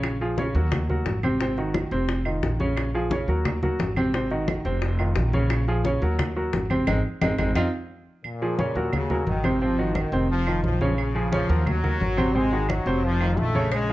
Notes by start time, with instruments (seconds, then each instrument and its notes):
Already playing: upright bass A#1, grand piano C#3 C#4 C#5
0.03 high bongo, high conga, claves
0.20 grand piano F3 F4 G#4, high conga
0.38 grand piano C#3 C#4 C#5, high bongo, high conga
0.55 upright bass D#2, grand piano F#3 F#4 A#4, high conga
0.72 high bongo, high conga, low conga, claves
0.89 grand piano F#3 F#4 A#4, high conga, low conga
1.06 upright bass G#1, high bongo, low bongo, high conga
1.23 grand piano C3 C4 C5, high conga, claves
1.40 grand piano C3 C4 C5, high bongo, high conga
1.57 grand piano D#3 D#4 F#4, high bongo, high conga
1.74 high bongo, high conga, claves
1.91 upright bass F1, grand piano C3 C4 C5, high bongo, high conga
2.09 high bongo, high conga
2.25 grand piano D#3 D#4 F4, high conga, claves
2.43 upright bass A#1, high bongo, low bongo, high conga
2.60 grand piano C#3 C#4 C#5, high bongo, high conga
2.77 high bongo, claves
2.94 grand piano F3 F4 G#4, high conga
3.11 grand piano C#3 C#4 C#5, high bongo, high conga
3.28 upright bass D#2, grand piano F#3 F#4 A#4, high conga
3.45 high bongo, high conga, low conga, claves
3.63 grand piano F#3 F#4 A#4, high conga, low conga
3.79 upright bass G#1, high bongo, low bongo, high conga
3.96 grand piano C3 C4 C5, high conga, claves
4.14 grand piano C3 C4 C5, high bongo, high conga
4.31 grand piano D#3 D#4 F#4, high bongo, high conga
4.48 high bongo, high conga, claves
4.65 upright bass F1, grand piano C3 C4 C5, high bongo, high conga
4.82 high bongo, high conga
4.99 grand piano D#3 D#4 F4, high conga, claves
5.16 upright bass A#1, high bongo, low bongo, high conga
5.33 grand piano C#3 C#4 C#5, high bongo, high conga
5.50 high bongo, high conga, claves
5.68 grand piano F3 F4 G#4, high conga
5.85 grand piano C#3 C#4 C#5, high bongo, high conga
6.02 upright bass D#2, grand piano F#3 F#4 A#4, high conga
6.19 high bongo, high conga, low conga, claves
6.36 grand piano F#3 F#4 A#4, high conga
6.53 upright bass G#1, high bongo, low bongo, high conga
6.70 grand piano C3 C4 C5, high conga, claves
6.87 upright bass G#1, grand piano G#3 C4 D#4, low bongo, high conga, claves
7.21 upright bass G#1, grand piano G#3 C4 D#4, low bongo, high conga, claves
7.38 upright bass G#1, grand piano G#3 C4 D#4, low bongo, high conga, claves
7.55 upright bass F2, grand piano C4 D#4 F4, low bongo, high conga, claves
8.24 trombone section A#2, high conga, claves
8.42 grand piano F3 F4 G#4, high conga
8.59 grand piano C#3 C#4 C#5, high conga
8.75 upright bass D#2, grand piano F#3 F#4 A#4, high conga
8.93 trombone section C#3, high conga, low conga, claves
9.10 grand piano F#3 F#4 A#4, high conga, low conga
9.27 upright bass G#1, trombone section D#3, high conga
9.44 grand piano C3 C4 C5, high conga, claves
9.61 grand piano C3 C4 C5, trombone section F3, high conga
9.78 grand piano D#3 D#4 F#4, high conga
9.95 trombone section D#3, high conga, claves
10.12 upright bass F1, grand piano C3 C4 C5, high conga
10.29 trombone section F3, high conga
10.47 grand piano D#3 D#4 F4, high conga, claves
10.63 upright bass A#1, trombone section F3, high conga
10.81 grand piano C#3 C#4 C#5, high conga
10.98 trombone section C#3, high conga, claves
11.15 grand piano F3 F4 G#4, high conga
11.32 grand piano C#3 C#4 C#5, trombone section F3, high conga
11.49 upright bass D#2, grand piano F#3 F#4 A#4, high conga
11.66 trombone section F#3, high conga, low conga, claves
11.84 grand piano F#3 F#4 A#4, high conga, low conga
12.00 upright bass G#1, high conga
12.17 grand piano C3 C4 C5, high conga, claves
12.35 grand piano C3 C4 C5, trombone section G#3, high conga
12.52 grand piano D#3 D#4 F#4, high conga
12.69 trombone section F#3, high conga, claves
12.86 upright bass F1, grand piano C3 C4 C5, high conga
13.04 trombone section F3, high conga
13.21 grand piano D#3 D#4 F4, high conga, claves
13.37 upright bass A#1, trombone section A3, high conga
13.55 grand piano C#3 C#4 C#5, high conga
13.72 trombone section G#3, cowbell, high conga, claves
13.89 grand piano F3 F4 G#4, high conga